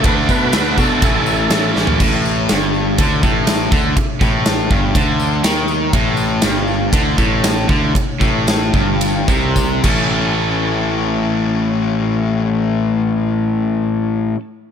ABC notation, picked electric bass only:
X:1
M:4/4
L:1/8
Q:1/4=120
K:Amix
V:1 name="Picked electric bass" clef=bass
D,, B,, D,, B,, A,,,2 A,,, A,,, | A,,,2 G,,,2 D,, A,,,2 D,, | z A,,,2 G,,, D,,2 ^D,,2 | A,,,2 G,,,2 D,, A,,,2 D,, |
z A,,,2 G,,,2 =C,,2 A,,,- | A,,,8- | A,,,8 |]